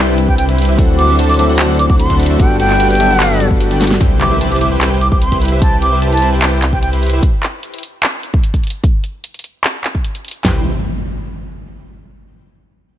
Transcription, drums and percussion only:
0.18 closed hi-hat
0.28 kick
0.38 closed hi-hat
0.49 closed hi-hat
0.58 closed hi-hat
0.62 closed hi-hat
0.65 closed hi-hat
0.78 kick, closed hi-hat
0.99 closed hi-hat
1.19 closed hi-hat
1.29 closed hi-hat
1.34 closed hi-hat
1.39 closed hi-hat
1.59 clap, closed hi-hat
1.79 closed hi-hat
1.90 kick
2.00 closed hi-hat
2.10 kick, closed hi-hat
2.20 closed hi-hat
2.23 closed hi-hat
2.26 closed hi-hat
2.40 kick, closed hi-hat
2.60 closed hi-hat
2.70 clap
2.80 closed hi-hat
2.90 closed hi-hat
2.95 closed hi-hat
3.00 closed hi-hat
3.20 clap, closed hi-hat
3.40 closed hi-hat
3.51 kick
3.60 closed hi-hat
3.71 closed hi-hat
3.81 snare, closed hi-hat
3.84 closed hi-hat
3.87 snare, closed hi-hat
4.01 kick, closed hi-hat
4.21 clap, closed hi-hat
4.41 closed hi-hat
4.52 closed hi-hat
4.56 closed hi-hat
4.61 closed hi-hat
4.81 clap, closed hi-hat
5.01 closed hi-hat
5.12 kick
5.22 closed hi-hat
5.32 kick, closed hi-hat
5.42 closed hi-hat
5.45 closed hi-hat
5.48 closed hi-hat
5.62 kick, closed hi-hat
5.82 closed hi-hat
6.02 closed hi-hat
6.13 closed hi-hat
6.17 closed hi-hat
6.22 closed hi-hat
6.42 clap, closed hi-hat
6.62 clap, closed hi-hat
6.73 kick
6.83 closed hi-hat
6.93 closed hi-hat
7.03 closed hi-hat
7.06 closed hi-hat
7.10 closed hi-hat
7.23 kick, closed hi-hat
7.43 clap, closed hi-hat
7.63 closed hi-hat
7.74 closed hi-hat
7.78 closed hi-hat
7.83 closed hi-hat
8.03 clap, closed hi-hat
8.23 closed hi-hat
8.34 kick
8.43 closed hi-hat
8.54 kick, closed hi-hat
8.63 closed hi-hat
8.67 closed hi-hat
8.70 closed hi-hat
8.84 kick, closed hi-hat
9.04 closed hi-hat
9.24 closed hi-hat
9.34 closed hi-hat
9.39 closed hi-hat
9.44 closed hi-hat
9.64 clap, closed hi-hat
9.84 clap, closed hi-hat
9.95 kick
10.05 closed hi-hat
10.15 closed hi-hat
10.25 closed hi-hat
10.28 closed hi-hat
10.31 closed hi-hat
10.45 kick, snare, clap

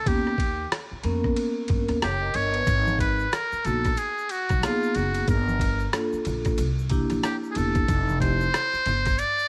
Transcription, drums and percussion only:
0.06 kick, ride
0.27 cross-stick
0.38 kick, ride
0.72 cross-stick, hi-hat pedal, ride
1.04 ride
1.24 kick, cross-stick
1.36 ride
1.68 kick, ride
1.88 cross-stick, ride
2.02 cross-stick, hi-hat pedal, ride
2.34 ride
2.54 ride
2.67 kick, ride, shaker
2.87 high conga, shaker
2.99 kick, ride, shaker
3.19 shaker
3.33 cross-stick, hi-hat pedal, ride, shaker
3.52 shaker
3.65 ride, low conga, shaker
3.85 kick, cross-stick, ride, shaker
3.97 ride, shaker
4.18 shaker
4.29 ride, shaker
4.49 kick, cross-stick, ride, high conga, shaker
4.63 cross-stick, hi-hat pedal, ride, shaker
4.83 shaker
4.95 ride, low conga, shaker
5.14 ride, shaker
5.28 kick, ride, shaker
5.48 high conga, shaker
5.60 kick, ride, shaker
5.79 shaker
5.93 cross-stick, hi-hat pedal, ride, shaker
6.13 shaker
6.25 ride, low conga, shaker
6.45 kick, cross-stick, ride, shaker
6.58 ride, shaker
6.79 shaker
6.90 kick, ride, shaker
7.10 cross-stick, ride, high conga, shaker
7.24 cross-stick, hi-hat pedal, ride, shaker
7.44 shaker
7.55 ride, low conga, shaker
7.75 kick, ride, shaker
7.88 kick, ride, shaker
8.09 high conga, shaker
8.20 kick, ride, shaker
8.40 shaker
8.54 cross-stick, hi-hat pedal, ride, shaker
8.74 shaker
8.86 ride, low conga, shaker
9.05 kick, cross-stick, ride, shaker
9.18 ride, shaker
9.39 shaker

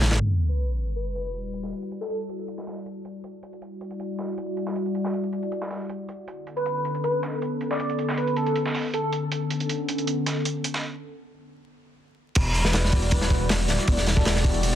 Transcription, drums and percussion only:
0.01 snare, closed hi-hat, open hi-hat
0.06 snare, closed hi-hat
0.11 snare, closed hi-hat, open hi-hat
0.15 snare, closed hi-hat
0.20 closed hi-hat
0.39 closed hi-hat
0.49 closed hi-hat
0.58 closed hi-hat
0.77 closed hi-hat
0.87 closed hi-hat
0.96 closed hi-hat
1.15 snare, closed hi-hat
1.34 closed hi-hat
1.53 closed hi-hat
1.63 snare
1.72 closed hi-hat
1.82 closed hi-hat
1.91 closed hi-hat
2.01 snare
2.10 closed hi-hat
2.20 closed hi-hat
2.29 closed hi-hat
2.39 closed hi-hat
2.48 closed hi-hat
2.58 snare
2.67 snare, open hi-hat
2.86 closed hi-hat
3.05 closed hi-hat
3.24 closed hi-hat
3.43 closed hi-hat
3.53 closed hi-hat
3.62 closed hi-hat
3.81 closed hi-hat
3.91 closed hi-hat
4.00 closed hi-hat
4.19 snare, closed hi-hat
4.38 closed hi-hat
4.57 closed hi-hat
4.67 snare
4.76 closed hi-hat
4.86 closed hi-hat
4.95 closed hi-hat
5.04 snare
5.14 closed hi-hat
5.23 closed hi-hat
5.33 closed hi-hat
5.43 closed hi-hat
5.52 closed hi-hat
5.62 snare
5.71 snare, open hi-hat
5.89 closed hi-hat
6.09 closed hi-hat
6.28 closed hi-hat
6.47 closed hi-hat
6.57 closed hi-hat
6.66 closed hi-hat
6.85 closed hi-hat
6.95 closed hi-hat
7.04 closed hi-hat
7.23 snare, closed hi-hat
7.42 closed hi-hat
7.61 closed hi-hat
7.71 snare
7.80 closed hi-hat
7.90 closed hi-hat
7.99 closed hi-hat
8.09 snare
8.18 closed hi-hat
8.27 closed hi-hat
8.36 closed hi-hat
8.46 closed hi-hat
8.56 closed hi-hat
8.66 snare
8.75 snare, open hi-hat
8.94 closed hi-hat
9.12 closed hi-hat
9.32 closed hi-hat
9.50 closed hi-hat
9.60 closed hi-hat
9.69 closed hi-hat
9.89 closed hi-hat
9.98 closed hi-hat
10.07 closed hi-hat
10.26 snare, closed hi-hat
10.45 closed hi-hat
10.64 closed hi-hat
10.74 snare
12.35 kick, closed hi-hat, open hi-hat, crash
12.54 closed hi-hat, open hi-hat
12.64 snare, closed hi-hat
12.73 snare, closed hi-hat, open hi-hat
12.85 snare
12.92 kick, closed hi-hat, open hi-hat
13.02 closed hi-hat
13.11 kick, closed hi-hat, open hi-hat
13.21 snare
13.30 kick, snare, closed hi-hat, open hi-hat
13.49 snare, closed hi-hat, open hi-hat
13.68 snare, closed hi-hat, open hi-hat
13.78 snare, closed hi-hat
13.88 kick, closed hi-hat, open hi-hat
13.97 snare, closed hi-hat
14.06 snare, closed hi-hat, open hi-hat
14.16 kick, snare
14.25 snare, closed hi-hat, open hi-hat
14.35 snare, closed hi-hat
14.44 kick, closed hi-hat, open hi-hat
14.54 closed hi-hat
14.63 closed hi-hat, open hi-hat

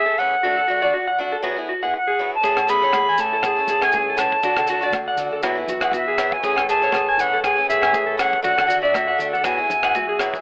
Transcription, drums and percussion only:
2.43 kick, muted conga, maracas
2.57 cross-stick, low agogo
2.68 closed hi-hat, muted conga, maracas
2.83 maracas
2.93 kick, cross-stick, high conga, low agogo, maracas
3.18 closed hi-hat, maracas
3.43 kick, cross-stick, muted conga, low agogo, maracas
3.68 closed hi-hat, high conga, maracas
3.81 cross-stick, low agogo, maracas
3.92 kick, high conga, maracas
4.17 cross-stick, closed hi-hat, muted conga, low agogo, maracas
4.32 kick
4.43 kick, muted conga, maracas
4.57 cross-stick, low agogo
4.67 closed hi-hat, muted conga, maracas
4.82 maracas
4.93 kick, cross-stick, high conga, low agogo, maracas
5.17 closed hi-hat, maracas
5.43 kick, cross-stick, muted conga, low agogo, maracas
5.68 closed hi-hat, low conga, maracas
5.81 cross-stick, low agogo, maracas
5.92 kick, high conga, maracas
6.17 cross-stick, closed hi-hat, muted conga, low agogo, maracas
6.32 kick
6.43 kick, muted conga, maracas
6.56 cross-stick, low agogo
6.69 closed hi-hat, muted conga, maracas
6.83 maracas
6.92 kick, cross-stick, high conga, low agogo, maracas
7.19 closed hi-hat, maracas
7.44 kick, cross-stick, muted conga, low agogo, maracas
7.70 closed hi-hat, maracas
7.82 cross-stick, low agogo, maracas
7.93 kick, high conga, maracas
8.19 cross-stick, closed hi-hat, muted conga, low agogo, maracas
8.33 kick
8.44 kick, muted conga, maracas
8.58 cross-stick, low agogo
8.70 closed hi-hat, muted conga, maracas
8.85 maracas
8.94 kick, cross-stick, high conga, low agogo, maracas
9.20 closed hi-hat, maracas
9.34 maracas
9.44 kick, cross-stick, muted conga, low agogo, maracas
9.70 closed hi-hat, low conga, maracas
9.83 cross-stick, low agogo, maracas
9.95 kick, high conga, maracas
10.19 cross-stick, closed hi-hat, muted conga, low agogo, maracas
10.34 kick, maracas

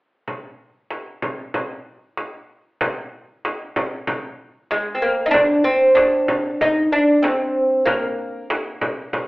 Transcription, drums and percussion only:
0.28 frame drum
0.91 frame drum
1.22 frame drum
1.54 frame drum
2.17 frame drum
2.81 frame drum
3.45 frame drum
3.76 frame drum
4.07 frame drum
4.71 frame drum
5.34 frame drum
5.97 frame drum
6.28 frame drum
6.61 frame drum
7.24 frame drum
7.87 frame drum
8.50 frame drum
8.81 frame drum
9.13 frame drum

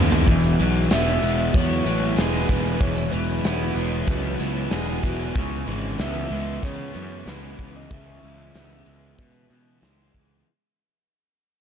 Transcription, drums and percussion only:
0.12 floor tom
0.27 kick, open hi-hat, tambourine
0.44 tambourine
0.59 open hi-hat
0.91 snare, open hi-hat, tambourine
1.08 tambourine
1.23 open hi-hat, tambourine
1.54 kick, open hi-hat
1.86 open hi-hat, tambourine
2.18 snare, open hi-hat, tambourine
2.49 kick, open hi-hat, tambourine
2.67 snare
2.81 kick, open hi-hat, tambourine
2.97 tambourine
3.13 open hi-hat
3.44 snare, open hi-hat, tambourine
3.61 tambourine
3.76 open hi-hat, tambourine
3.92 tambourine
4.07 kick, open hi-hat
4.39 open hi-hat, tambourine
4.71 snare, open hi-hat, tambourine
5.03 kick, open hi-hat, tambourine
5.36 kick, open hi-hat
5.68 open hi-hat
5.99 snare, open hi-hat
6.31 open hi-hat
6.63 kick, open hi-hat
6.95 open hi-hat
7.27 snare, open hi-hat
7.59 kick, open hi-hat
7.91 kick, open hi-hat
8.23 open hi-hat
8.55 snare, open hi-hat
8.87 open hi-hat
9.19 kick, open hi-hat
9.51 open hi-hat
9.82 snare, open hi-hat
10.14 kick, open hi-hat

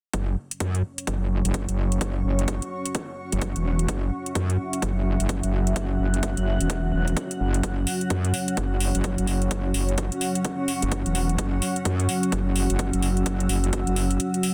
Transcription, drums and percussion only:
0.13 kick, closed hi-hat
0.51 closed hi-hat
0.60 kick, closed hi-hat
0.75 closed hi-hat
0.98 closed hi-hat
1.07 kick, closed hi-hat
1.45 closed hi-hat
1.54 kick, closed hi-hat
1.69 closed hi-hat
1.92 closed hi-hat
2.01 kick, closed hi-hat
2.39 closed hi-hat
2.48 kick, closed hi-hat
2.62 closed hi-hat
2.86 closed hi-hat
2.95 kick, closed hi-hat
3.32 closed hi-hat
3.41 kick, closed hi-hat
3.56 closed hi-hat
3.79 closed hi-hat
3.88 kick, closed hi-hat
4.26 closed hi-hat
4.35 kick, closed hi-hat
4.50 closed hi-hat
4.73 closed hi-hat
4.82 kick, closed hi-hat
5.20 closed hi-hat
5.29 kick, closed hi-hat
5.43 closed hi-hat
5.67 closed hi-hat
5.76 kick, closed hi-hat
6.14 closed hi-hat
6.23 kick, closed hi-hat
6.37 closed hi-hat
6.61 closed hi-hat
6.70 kick, closed hi-hat
7.08 closed hi-hat
7.17 kick, closed hi-hat
7.31 closed hi-hat
7.54 closed hi-hat
7.63 kick, closed hi-hat
7.87 open hi-hat
8.01 closed hi-hat
8.10 kick, closed hi-hat
8.25 closed hi-hat
8.34 open hi-hat
8.48 closed hi-hat
8.57 kick, closed hi-hat
8.80 open hi-hat
8.95 closed hi-hat
9.04 kick, closed hi-hat
9.18 closed hi-hat
9.27 open hi-hat
9.42 closed hi-hat
9.51 kick, closed hi-hat
9.74 open hi-hat
9.89 closed hi-hat
9.98 kick, closed hi-hat
10.12 closed hi-hat
10.21 open hi-hat
10.35 closed hi-hat
10.45 kick, closed hi-hat
10.68 open hi-hat
10.82 closed hi-hat
10.92 kick, closed hi-hat
11.06 closed hi-hat
11.15 open hi-hat
11.29 closed hi-hat
11.38 kick, closed hi-hat
11.62 open hi-hat
11.76 closed hi-hat
11.85 kick, closed hi-hat
12.00 closed hi-hat
12.09 open hi-hat
12.23 closed hi-hat
12.32 kick, closed hi-hat
12.56 open hi-hat
12.70 closed hi-hat
12.79 kick, closed hi-hat
12.93 closed hi-hat
13.02 open hi-hat
13.17 closed hi-hat
13.26 kick, closed hi-hat
13.40 closed hi-hat
13.49 open hi-hat
13.64 closed hi-hat
13.73 kick, closed hi-hat
13.87 closed hi-hat
13.96 open hi-hat
14.11 closed hi-hat
14.20 closed hi-hat
14.34 closed hi-hat
14.43 open hi-hat

